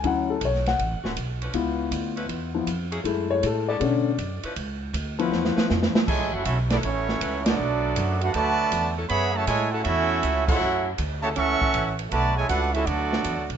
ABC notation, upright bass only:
X:1
M:4/4
L:1/8
Q:"Swing" 1/4=159
K:F#m
V:1 name="Upright bass" clef=bass
D,,2 B,,,2 (3A,,, F,,, D,,, B,,,2 | C,,2 D,,2 E,,2 ^E,,2 | F,,2 A,,2 B,,2 F,, z | C,,2 D,,2 E,, z ^E,, z |
(3C,, A,,, F,,, B,,,2 A,,,2 C,,2 | B,,,2 F,,2 D,,2 E,,2 | F,,2 A,,2 E,,2 C,,2 | F,,2 D,,2 C,, z A,,,2 |
B,,,2 C,,2 D,,2 (3E,, D,, B,,, |]